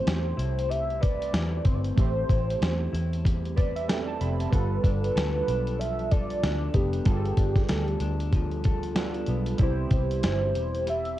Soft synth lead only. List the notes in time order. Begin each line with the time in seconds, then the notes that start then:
Already playing: C5
0.70 E5
1.01 D5
1.64 C5
1.74 D5
1.81 C5
4.52 B4
4.85 B4
5.79 E5
6.11 D5
6.74 G4
9.62 C5
9.93 C5
10.89 E5